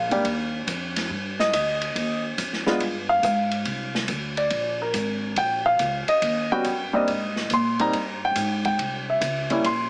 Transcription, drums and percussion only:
0.11 ride
0.25 kick, ride
0.67 kick, hi-hat pedal, ride
0.96 snare, ride
1.10 kick
1.39 snare
1.53 kick, hi-hat pedal, ride
1.82 ride
1.96 kick, ride
2.38 kick, hi-hat pedal, ride
2.53 snare
2.67 snare
2.80 kick, ride
3.23 kick, hi-hat pedal, ride
3.51 ride
3.65 kick, ride
3.95 snare
4.08 kick, hi-hat pedal, ride
4.37 ride
4.50 kick, ride
4.94 kick, hi-hat pedal, ride
5.36 kick, ride
5.79 kick, hi-hat pedal, ride
6.08 ride
6.22 kick, ride
6.64 kick, hi-hat pedal, ride
7.08 kick, ride
7.36 snare
7.50 kick, hi-hat pedal, ride
7.79 ride
7.93 kick, ride
8.36 kick, hi-hat pedal, ride
8.65 kick, ride
8.79 kick, ride
9.21 kick, hi-hat pedal, ride
9.50 ride
9.64 kick, ride

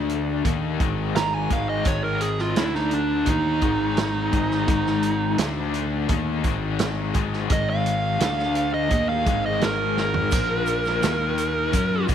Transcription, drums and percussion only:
0.09 closed hi-hat
0.45 kick, closed hi-hat
0.80 kick, closed hi-hat
1.16 snare, closed hi-hat
1.50 kick, closed hi-hat
1.85 kick, closed hi-hat
2.21 closed hi-hat
2.39 snare
2.56 snare, closed hi-hat
2.75 snare
2.91 closed hi-hat
3.26 kick, closed hi-hat
3.61 kick, closed hi-hat
3.97 snare, closed hi-hat
4.33 kick, closed hi-hat
4.51 snare
4.68 kick, closed hi-hat
4.87 snare
5.03 closed hi-hat
5.38 snare, closed hi-hat
5.74 closed hi-hat
6.09 kick, closed hi-hat
6.44 kick, closed hi-hat
6.79 snare, closed hi-hat
7.14 kick, closed hi-hat
7.33 snare
7.50 kick, closed hi-hat
7.86 closed hi-hat
8.20 snare, closed hi-hat
8.39 snare
8.55 closed hi-hat
8.90 kick, closed hi-hat
9.26 kick, closed hi-hat
9.61 snare, closed hi-hat
9.97 snare
10.14 floor tom
10.31 kick, closed hi-hat, splash, shaker
10.66 closed hi-hat, shaker
10.85 snare, shaker
11.03 snare, closed hi-hat, shaker
11.38 closed hi-hat, shaker
11.73 kick, closed hi-hat, shaker
12.09 kick, closed hi-hat, shaker

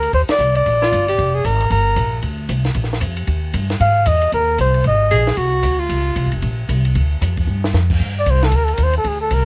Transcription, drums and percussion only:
0.03 ride
0.13 kick, ride
0.29 snare, ride
0.39 hi-hat pedal
0.55 ride
0.66 kick, ride
0.83 snare
0.92 kick, hi-hat pedal, ride
1.08 ride
1.18 kick, ride
1.44 kick, hi-hat pedal, ride
1.60 ride
1.70 kick, ride
1.96 kick, hi-hat pedal, ride
2.22 kick, ride
2.49 kick, hi-hat pedal, ride
2.64 snare, ride
2.74 kick, ride
2.84 snare
2.93 snare
3.01 kick, hi-hat pedal, ride
3.17 ride
3.27 kick, ride
3.54 kick, hi-hat pedal, ride
3.70 snare, ride
3.80 kick, ride
4.06 kick, hi-hat pedal, ride
4.21 ride
4.32 kick, ride
4.58 kick, hi-hat pedal, ride
4.74 ride
4.84 kick, ride
5.11 kick, hi-hat pedal, ride
5.27 snare, ride
5.37 kick, ride
5.63 kick, hi-hat pedal, ride
5.90 kick, ride
6.16 kick, hi-hat pedal, ride
6.32 ride
6.42 kick, ride
6.69 kick, hi-hat pedal, ride
6.85 ride
6.95 kick, ride
7.22 kick, hi-hat pedal, ride
7.37 kick, ride
7.64 snare
7.74 snare, hi-hat pedal
7.90 kick, crash
8.00 kick
8.26 kick, hi-hat pedal, ride
8.42 snare, ride
8.52 kick, ride
8.68 ride
8.78 kick, hi-hat pedal, ride
8.93 ride
9.04 kick, ride
9.31 kick, hi-hat pedal, ride

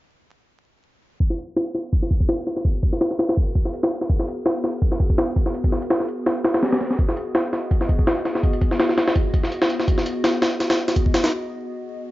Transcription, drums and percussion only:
1.20 kick, closed hi-hat
1.30 snare
1.38 closed hi-hat
1.56 snare, closed hi-hat
1.75 snare, closed hi-hat
1.93 kick, closed hi-hat
2.02 snare
2.11 kick, closed hi-hat
2.20 kick
2.29 snare, closed hi-hat
2.47 snare, closed hi-hat
2.57 snare
2.65 kick, closed hi-hat
2.75 closed hi-hat
2.83 kick, closed hi-hat
2.93 snare
3.01 snare, closed hi-hat
3.11 snare
3.19 snare, closed hi-hat
3.29 snare, closed hi-hat
3.37 kick, closed hi-hat
3.55 kick, closed hi-hat
3.65 snare
3.73 closed hi-hat
3.83 snare
3.92 closed hi-hat
4.01 snare
4.10 kick, closed hi-hat
4.19 snare
4.28 closed hi-hat
4.46 snare, closed hi-hat
4.64 snare, closed hi-hat
4.82 kick, closed hi-hat
4.92 snare
5.00 kick, closed hi-hat
5.10 kick
5.18 snare, closed hi-hat
5.36 kick, closed hi-hat
5.46 snare
5.54 closed hi-hat
5.64 kick, closed hi-hat
5.72 snare
5.82 closed hi-hat
5.90 snare, closed hi-hat
6.00 snare
6.08 closed hi-hat
6.26 snare, closed hi-hat
6.45 snare, closed hi-hat
6.54 snare, closed hi-hat
6.63 snare, closed hi-hat
6.72 snare, closed hi-hat
6.81 snare, closed hi-hat
6.91 snare
6.99 kick, closed hi-hat
7.09 snare
7.17 closed hi-hat
7.35 snare, closed hi-hat
7.53 snare, closed hi-hat
7.71 kick, closed hi-hat
7.81 snare
7.89 kick, closed hi-hat
7.99 kick
8.07 snare, closed hi-hat
8.25 snare, closed hi-hat
8.35 snare
8.43 kick, closed hi-hat
8.53 closed hi-hat
8.61 kick, closed hi-hat
8.71 snare
8.80 snare, closed hi-hat
8.89 snare
8.98 snare, closed hi-hat
9.07 snare, closed hi-hat
9.16 kick, closed hi-hat
9.34 kick, closed hi-hat
9.44 snare
9.52 closed hi-hat
9.62 snare
9.70 closed hi-hat
9.80 snare
9.88 kick, closed hi-hat
9.98 snare
10.06 closed hi-hat
10.24 snare, closed hi-hat
10.42 snare, closed hi-hat
10.60 snare, closed hi-hat
10.70 snare, closed hi-hat
10.88 snare, closed hi-hat
10.96 kick, closed hi-hat
11.06 kick
11.14 snare, closed hi-hat
11.24 snare, closed hi-hat

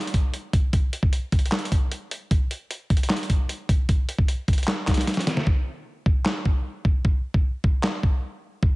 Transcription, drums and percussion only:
0.01 closed hi-hat
0.07 closed hi-hat
0.14 kick, closed hi-hat
0.34 closed hi-hat
0.53 kick, closed hi-hat
0.73 kick, closed hi-hat
0.93 closed hi-hat
1.03 kick
1.13 closed hi-hat
1.32 kick, closed hi-hat
1.39 closed hi-hat
1.46 closed hi-hat
1.52 snare, clap, closed hi-hat
1.59 closed hi-hat
1.65 closed hi-hat
1.72 kick, closed hi-hat
1.92 closed hi-hat
2.11 closed hi-hat
2.31 kick, closed hi-hat
2.51 closed hi-hat
2.71 closed hi-hat
2.90 kick, closed hi-hat
2.97 closed hi-hat
3.03 closed hi-hat
3.10 snare, clap, closed hi-hat
3.16 closed hi-hat
3.23 closed hi-hat
3.30 kick, closed hi-hat
3.49 closed hi-hat
3.69 kick, closed hi-hat
3.89 kick, closed hi-hat
4.09 closed hi-hat
4.18 kick
4.28 closed hi-hat
4.48 kick, closed hi-hat
4.53 closed hi-hat
4.58 closed hi-hat
4.63 closed hi-hat
4.68 snare, clap, closed hi-hat
4.87 kick, snare, clap, closed hi-hat
4.94 snare, closed hi-hat
5.01 closed hi-hat
5.07 snare, closed hi-hat
5.14 snare, closed hi-hat
5.21 closed hi-hat
5.27 snare, closed hi-hat
5.37 snare
5.47 kick
6.06 kick
6.26 snare, clap
6.45 kick
6.85 kick
7.05 kick
7.34 kick
7.64 kick
7.83 snare, clap
8.03 kick
8.63 kick

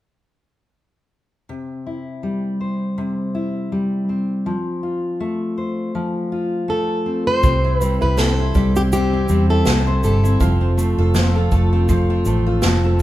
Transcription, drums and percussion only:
7.43 kick, shaker
7.81 shaker
8.18 snare, shaker
8.55 kick, shaker
8.76 shaker
8.92 shaker
9.29 shaker
9.66 snare, shaker
10.03 shaker
10.25 shaker
10.41 kick, shaker
10.78 shaker
11.15 snare, shaker
11.52 kick, shaker
11.89 kick, shaker
12.25 shaker
12.62 snare, shaker

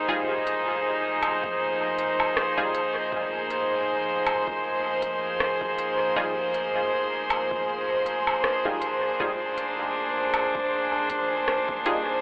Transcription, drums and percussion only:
0.08 kick
0.47 closed hi-hat
1.23 closed hi-hat, low woodblock
1.44 kick
1.99 closed hi-hat
2.20 low woodblock
2.37 cross-stick
2.57 kick
2.75 closed hi-hat
3.12 kick
3.50 closed hi-hat
4.27 closed hi-hat, low woodblock
4.47 kick
5.02 kick, closed hi-hat
5.40 cross-stick
5.61 kick
5.79 closed hi-hat
6.16 kick
6.54 closed hi-hat
7.30 closed hi-hat, low woodblock
7.51 kick
8.06 closed hi-hat
8.27 low woodblock
8.44 cross-stick
8.65 kick
8.82 closed hi-hat
9.20 kick
9.58 closed hi-hat
10.34 closed hi-hat, low woodblock
10.55 kick
11.10 kick, closed hi-hat
11.48 cross-stick
11.69 kick
11.86 closed hi-hat

